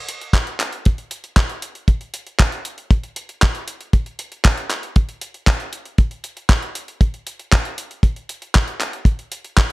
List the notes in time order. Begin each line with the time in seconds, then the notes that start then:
0.09 closed hi-hat
0.21 closed hi-hat
0.33 kick, clap, closed hi-hat
0.47 closed hi-hat
0.60 clap, closed hi-hat
0.73 closed hi-hat
0.85 kick, closed hi-hat
0.98 closed hi-hat
1.11 closed hi-hat
1.24 closed hi-hat
1.36 kick, clap, closed hi-hat
1.49 closed hi-hat
1.62 closed hi-hat
1.75 closed hi-hat
1.88 kick, closed hi-hat
2.01 closed hi-hat
2.14 closed hi-hat
2.27 closed hi-hat
2.39 kick, clap, closed hi-hat
2.52 closed hi-hat
2.65 closed hi-hat
2.78 closed hi-hat
2.91 kick, closed hi-hat
3.03 closed hi-hat
3.16 closed hi-hat
3.29 closed hi-hat
3.42 kick, clap, closed hi-hat
3.55 closed hi-hat
3.68 closed hi-hat
3.81 closed hi-hat
3.93 kick, closed hi-hat
4.06 closed hi-hat
4.19 closed hi-hat
4.32 closed hi-hat
4.45 kick, clap, closed hi-hat
4.57 closed hi-hat
4.70 clap, closed hi-hat
4.83 closed hi-hat
4.96 kick, closed hi-hat
5.09 closed hi-hat
5.21 closed hi-hat
5.34 closed hi-hat
5.47 kick, clap, closed hi-hat
5.60 closed hi-hat
5.73 closed hi-hat
5.85 closed hi-hat
5.98 kick, closed hi-hat
6.11 closed hi-hat
6.24 closed hi-hat
6.37 closed hi-hat
6.49 kick, clap, closed hi-hat
6.62 closed hi-hat
6.75 closed hi-hat
6.88 closed hi-hat
7.01 kick, closed hi-hat
7.14 closed hi-hat
7.27 closed hi-hat
7.39 closed hi-hat
7.52 kick, clap, closed hi-hat
7.65 closed hi-hat
7.78 closed hi-hat
7.91 closed hi-hat
8.03 kick, closed hi-hat
8.16 closed hi-hat
8.29 closed hi-hat
8.42 closed hi-hat
8.55 kick, clap, closed hi-hat
8.68 closed hi-hat
8.80 clap, closed hi-hat
8.93 closed hi-hat
9.05 kick, closed hi-hat
9.19 closed hi-hat
9.32 closed hi-hat
9.45 closed hi-hat
9.57 kick, clap, closed hi-hat